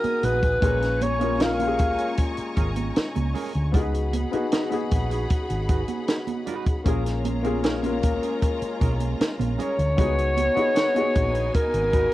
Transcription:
Already playing: french horn section C#3 B3 D#4 F#4, string section B3 G#5 D#6, grand piano B3 D#4 F#4 G#4, celesta G#4, alto saxophone A#4
0.04 muted clean electric guitar stroke, muted fingered electric bass stroke, closed hi-hat, high conga
0.23 fingered electric bass A#1, clean electric guitar D#4 F#4 B4, alto saxophone B4, closed hi-hat, low conga
0.42 kick, closed hi-hat
0.60 fingered electric bass A#1, grand piano A#2 C#4 F4 G#4, french horn section A#2 G#3 C#4, clean electric guitar C#4 G#4 A#4, string section G#5 A#5 C#6, kick, closed hi-hat, muted conga, low conga
0.81 muted clean electric guitar stroke, snare, closed hi-hat
1.01 alto saxophone C#5, muted clean electric guitar stroke, closed hi-hat, muted conga, high conga
1.19 grand piano A#3 C#4 F4 A#4, clean electric guitar C#4 G#4 A#4, closed hi-hat, high conga
1.39 clean electric guitar C#4 G#4 A#4, celesta F4, alto saxophone F5, snare, closed hi-hat
1.57 grand piano A#3 C#4 F4 G4, closed hi-hat, high conga
1.68 grand piano G#4
1.79 muted clean electric guitar stroke, kick, closed hi-hat
1.97 clean electric guitar C#4 G#4 A#4, closed hi-hat
2.17 muted clean electric guitar stroke, kick, closed hi-hat
2.37 muted fingered electric bass stroke, closed hi-hat
2.56 fingered electric bass G#1, clean electric guitar C#4 G#4 A#4, kick, closed hi-hat, muted conga
2.75 muted clean electric guitar stroke, closed hi-hat, high conga
2.96 muted fingered electric bass stroke, snare, closed hi-hat, muted conga
3.15 fingered electric bass C#2, muted clean electric guitar stroke, closed hi-hat, high conga
3.34 clean electric guitar C#4 G#4 A#4, open hi-hat, muted conga, low conga
3.55 fingered electric bass D2, closed hi-hat
3.72 fingered electric bass C#2, french horn section C#3 B3 D#4 F#4, grand piano B3 D#4 F#4, clean electric guitar D#4 F#4 B4, string section G#4 F#5 B5, kick, closed hi-hat, low conga
3.76 grand piano G#4
3.93 muted clean electric guitar stroke, closed hi-hat
4.13 muted clean electric guitar stroke, closed hi-hat, high conga
4.31 grand piano B3 D#4 F#4 G#4, clean electric guitar D#4 F#4 B4, muted fingered electric bass stroke, closed hi-hat, high conga
4.52 clean electric guitar D#4 F#4 B4, celesta G#4, snare, closed hi-hat, muted conga
4.70 grand piano B3 D#4 F#4 G#4, closed hi-hat, high conga
4.91 fingered electric bass A#1, muted clean electric guitar stroke, kick, closed hi-hat, muted conga
5.10 clean electric guitar D#4 F#4 B4, closed hi-hat
5.30 muted clean electric guitar stroke, kick, closed hi-hat
5.50 fingered electric bass G#1, closed hi-hat
5.69 clean electric guitar D#4 F#4 B4, kick, closed hi-hat
5.88 muted clean electric guitar stroke, closed hi-hat, high conga
6.08 snare, closed hi-hat
6.27 muted clean electric guitar stroke, closed hi-hat, high conga
6.46 clean electric guitar D#4 F#4 B4, closed hi-hat, muted conga, low conga
6.66 muted clean electric guitar stroke, kick, closed hi-hat
6.84 fingered electric bass A#1, french horn section G#3 A#3 C#4, grand piano A#3 C#4 F4 G#4, clean electric guitar C#4 G#4 A#4, string section F4 C#5 A#5, kick, closed hi-hat, low conga
7.05 muted clean electric guitar stroke, snare, closed hi-hat
7.24 muted clean electric guitar stroke, closed hi-hat, muted conga, high conga
7.43 grand piano A#3 C#4 F4, clean electric guitar C#4 G#4 A#4, closed hi-hat, high conga
7.47 grand piano G#4
7.63 clean electric guitar C#4 G#4 A#4, snare, closed hi-hat, muted conga
7.82 grand piano A#3 C#4 F4 A#4, closed hi-hat, high conga
8.03 muted clean electric guitar stroke, kick, closed hi-hat
8.22 clean electric guitar C#4 G#4 A#4, closed hi-hat
8.41 celesta A#4, muted clean electric guitar stroke, kick, closed hi-hat
8.62 muted fingered electric bass stroke, closed hi-hat
8.80 fingered electric bass B1, clean electric guitar C#4 G#4 A#4, kick, closed hi-hat, muted conga
9.00 muted clean electric guitar stroke, closed hi-hat, high conga
9.20 muted fingered electric bass stroke, snare, closed hi-hat
9.39 fingered electric bass A#1, muted clean electric guitar stroke, closed hi-hat, high conga
9.58 clean electric guitar C#4 G#4 A#4, alto saxophone C#5, closed hi-hat, muted conga, low conga
9.79 fingered electric bass D2, closed hi-hat
9.97 fingered electric bass C#2, french horn section C#3 B3 D#4 F#4, grand piano B3 D#4 F#4 G#4, string section B3 D#4 G#5, clean electric guitar D#4 F#4 B4, kick, closed hi-hat, muted conga, low conga
10.19 closed hi-hat
10.37 muted clean electric guitar stroke, closed hi-hat, muted conga, high conga
10.55 grand piano B3 D#4 F#4 G#4, clean electric guitar D#4 F#4 B4, muted fingered electric bass stroke, closed hi-hat, high conga
10.75 clean electric guitar D#4 F#4 B4, snare, closed hi-hat, muted conga
10.94 grand piano B3 D#4 F#4 G#4, closed hi-hat, high conga
11.14 fingered electric bass A#1, muted clean electric guitar stroke, kick, closed hi-hat
11.34 clean electric guitar D#4 F#4 B4, closed hi-hat
11.54 alto saxophone A#4, muted clean electric guitar stroke, kick, closed hi-hat, muted conga
11.74 fingered electric bass G#1, closed hi-hat
11.92 clean electric guitar D#4 F#4 B4, celesta F#4, kick, closed hi-hat, muted conga

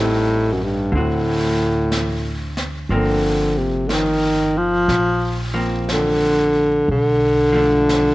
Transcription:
Already playing: upright bass A1, hollow-body jazz guitar G3 C4 D#4
0.00 baritone saxophone A2
0.52 baritone saxophone F#2
0.63 baritone saxophone G2
0.92 upright bass D2, baritone saxophone A2, hollow-body jazz guitar D3 C4, brush sweep
0.97 hollow-body jazz guitar F#4
1.92 brush sweep, snare, hi-hat pedal
2.57 snare
2.89 upright bass G1, hollow-body jazz guitar F3 A#3 C4, brush sweep
2.94 baritone saxophone D3
3.58 baritone saxophone C3
3.87 baritone saxophone D3, brush sweep, snare, hi-hat pedal
3.92 baritone saxophone D#3
4.58 baritone saxophone F3
4.88 upright bass A#1, brush sweep, snare
5.54 hollow-body jazz guitar F3 A#3 C4
5.89 baritone saxophone D3, brush sweep, snare, hi-hat pedal
6.88 upright bass B1, baritone saxophone D3, brush sweep
7.52 hollow-body jazz guitar F3 A3
7.57 hollow-body jazz guitar D4
7.89 brush sweep, snare, hi-hat pedal

